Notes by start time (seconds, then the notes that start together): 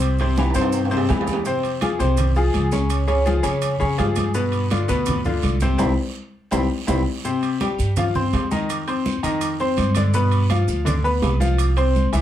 Already playing: C2 C3 C4 C5
0.00 high timbale, long guiro, maracas
0.18 C3 C4 C5, high conga, high timbale, maracas
0.36 E3 E4 G4, high conga, high timbale, short guiro, maracas
0.50 high timbale
0.54 G2 C3 C4 C5, high conga, short guiro, maracas
0.61 high timbale
0.73 high conga, high timbale, long guiro, maracas
0.85 high timbale
0.91 C3 C4 C5, high conga, maracas
0.97 low timbale
1.09 F2 E3 E4 G4, high conga, low timbale, short guiro, maracas
1.21 low timbale
1.27 high conga, short guiro, maracas
1.33 low timbale
1.45 C3 C4 C5, high conga, long guiro, maracas
1.63 high conga, high timbale, maracas
1.81 F3 F4 G#4, high conga, high timbale, short guiro, maracas
1.99 C2 C3 C4 C5, high conga, short guiro, maracas
2.17 high conga, low conga, high timbale, long guiro, maracas
2.35 F3 F4 G#4, high conga, maracas
2.54 C#2, high conga, high timbale, short guiro, maracas
2.72 C#3 C#4 C#5, high conga, short guiro, maracas
2.90 high timbale, long guiro, maracas
3.08 C#3 C#4 C#5, high conga, high timbale, maracas
3.25 F3 F4 G#4, high conga, short guiro, maracas
3.43 F2 C#3 C#4 C#5, high conga, high timbale, short guiro, maracas
3.62 high conga, high timbale, long guiro, maracas
3.80 F2 C#3 C#4 C#5, high conga, maracas
3.98 G2 F3 F4 G#4, high conga, high timbale, low timbale, short guiro, maracas
4.16 high conga, high timbale, short guiro, maracas
4.34 B2 B3 B4, high conga, long guiro, maracas
4.52 high conga, high timbale, maracas
4.70 D3 D4 F4, high conga, high timbale, short guiro, maracas
4.88 D2 B2 B3 B4, high conga, short guiro, maracas
5.06 high conga, low conga, high timbale, long guiro, maracas
5.24 D3 D4 F4, high conga, low conga, maracas
5.42 C2, high conga, high timbale, short guiro, maracas
5.60 C3 C4 C5, high conga, short guiro, maracas
5.78 C2 G3 C4 E4, high conga, high timbale, long guiro, maracas
6.51 C2 G3 C4 E4, high conga, high timbale, long guiro, maracas
6.87 C2 G3 C4 E4, high conga, high timbale, long guiro, maracas
7.24 C3 C4 C5, high conga, long guiro, maracas
7.42 high conga, high timbale, maracas
7.60 G3 G4 G5, high conga, high timbale, short guiro, maracas
7.78 G2, high conga, short guiro, maracas
7.96 F3 F4 F5, high conga, low conga, high timbale, long guiro, maracas
8.15 C4 C5 C6, high conga, low conga, maracas
8.33 F2, high conga, high timbale, low timbale, short guiro, maracas
8.51 D#3 D#4 D#5, high conga, short guiro, maracas
8.69 high conga, high timbale, long guiro, maracas
8.87 C4 C5 C6, high conga, high timbale, maracas
9.06 high conga, short guiro, maracas
9.23 F2 D#3 D#4 D#5, high conga, high timbale, short guiro, maracas
9.41 high conga, high timbale, long guiro, maracas
9.60 C4 C5 C6, high conga, maracas
9.77 G2, high conga, high timbale, short guiro, maracas
9.95 D3 D4 D5, high conga, high timbale, short guiro, maracas
10.13 B2 B3 B4, high conga, long guiro, maracas
10.31 high conga, high timbale, maracas
10.50 F3 F4 F5, high conga, high timbale, short guiro, maracas
10.68 D2, high conga, short guiro, maracas
10.85 D3 D4 D5, high conga, low conga, high timbale, long guiro, maracas
11.04 B3 B4 B5, high conga, maracas
11.22 C2, high conga, high timbale, low timbale, short guiro, maracas
11.40 F3 F4 F5, high conga, short guiro, maracas
11.58 high conga, high timbale, long guiro, maracas
11.77 C4 C5 C6, high conga, high timbale, maracas
11.95 high conga, short guiro, maracas
12.12 C2 E3 E4 E5, high conga, high timbale, short guiro, maracas